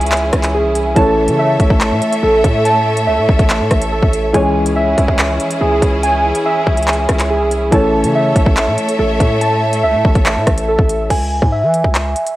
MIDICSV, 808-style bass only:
0, 0, Header, 1, 2, 480
1, 0, Start_track
1, 0, Key_signature, 4, "minor"
1, 0, Tempo, 422535
1, 1093, Time_signature, 4, 2, 24, 8
1, 14043, End_track
2, 0, Start_track
2, 0, Title_t, "808-style bass"
2, 0, Program_c, 0, 38
2, 0, Note_on_c, 0, 37, 108
2, 355, Note_off_c, 0, 37, 0
2, 374, Note_on_c, 0, 37, 110
2, 733, Note_on_c, 0, 36, 104
2, 750, Note_off_c, 0, 37, 0
2, 1075, Note_off_c, 0, 36, 0
2, 1094, Note_on_c, 0, 33, 105
2, 1453, Note_on_c, 0, 49, 101
2, 1470, Note_off_c, 0, 33, 0
2, 1795, Note_off_c, 0, 49, 0
2, 1815, Note_on_c, 0, 33, 109
2, 1929, Note_off_c, 0, 33, 0
2, 1934, Note_on_c, 0, 33, 108
2, 2173, Note_on_c, 0, 45, 103
2, 2190, Note_off_c, 0, 33, 0
2, 2287, Note_off_c, 0, 45, 0
2, 2533, Note_on_c, 0, 33, 106
2, 2764, Note_off_c, 0, 33, 0
2, 2773, Note_on_c, 0, 45, 110
2, 3493, Note_on_c, 0, 37, 100
2, 3510, Note_off_c, 0, 45, 0
2, 3613, Note_on_c, 0, 45, 99
2, 3630, Note_off_c, 0, 37, 0
2, 3727, Note_off_c, 0, 45, 0
2, 3735, Note_on_c, 0, 33, 106
2, 3849, Note_off_c, 0, 33, 0
2, 3854, Note_on_c, 0, 33, 114
2, 4093, Note_on_c, 0, 45, 102
2, 4110, Note_off_c, 0, 33, 0
2, 4207, Note_off_c, 0, 45, 0
2, 4214, Note_on_c, 0, 33, 108
2, 4559, Note_off_c, 0, 33, 0
2, 4573, Note_on_c, 0, 33, 104
2, 4919, Note_off_c, 0, 33, 0
2, 4933, Note_on_c, 0, 37, 114
2, 5625, Note_off_c, 0, 37, 0
2, 5655, Note_on_c, 0, 37, 106
2, 5769, Note_off_c, 0, 37, 0
2, 5774, Note_on_c, 0, 37, 105
2, 6119, Note_off_c, 0, 37, 0
2, 6374, Note_on_c, 0, 37, 107
2, 6604, Note_off_c, 0, 37, 0
2, 6613, Note_on_c, 0, 37, 106
2, 7189, Note_off_c, 0, 37, 0
2, 7574, Note_on_c, 0, 37, 107
2, 8035, Note_off_c, 0, 37, 0
2, 8054, Note_on_c, 0, 37, 110
2, 8413, Note_on_c, 0, 36, 105
2, 8430, Note_off_c, 0, 37, 0
2, 8755, Note_off_c, 0, 36, 0
2, 8773, Note_on_c, 0, 33, 109
2, 9133, Note_on_c, 0, 49, 100
2, 9150, Note_off_c, 0, 33, 0
2, 9475, Note_off_c, 0, 49, 0
2, 9494, Note_on_c, 0, 33, 107
2, 9609, Note_off_c, 0, 33, 0
2, 9614, Note_on_c, 0, 33, 109
2, 9854, Note_on_c, 0, 45, 97
2, 9871, Note_off_c, 0, 33, 0
2, 9967, Note_off_c, 0, 45, 0
2, 10213, Note_on_c, 0, 33, 109
2, 10444, Note_off_c, 0, 33, 0
2, 10453, Note_on_c, 0, 45, 105
2, 11173, Note_on_c, 0, 37, 104
2, 11190, Note_off_c, 0, 45, 0
2, 11294, Note_on_c, 0, 45, 97
2, 11311, Note_off_c, 0, 37, 0
2, 11407, Note_off_c, 0, 45, 0
2, 11414, Note_on_c, 0, 33, 106
2, 11529, Note_off_c, 0, 33, 0
2, 11534, Note_on_c, 0, 33, 112
2, 11774, Note_on_c, 0, 45, 99
2, 11791, Note_off_c, 0, 33, 0
2, 11888, Note_off_c, 0, 45, 0
2, 11894, Note_on_c, 0, 33, 108
2, 12239, Note_off_c, 0, 33, 0
2, 12253, Note_on_c, 0, 33, 103
2, 12599, Note_off_c, 0, 33, 0
2, 12613, Note_on_c, 0, 37, 109
2, 12959, Note_off_c, 0, 37, 0
2, 12974, Note_on_c, 0, 44, 104
2, 13214, Note_on_c, 0, 52, 98
2, 13231, Note_off_c, 0, 44, 0
2, 13442, Note_off_c, 0, 52, 0
2, 13454, Note_on_c, 0, 37, 103
2, 13799, Note_off_c, 0, 37, 0
2, 14043, End_track
0, 0, End_of_file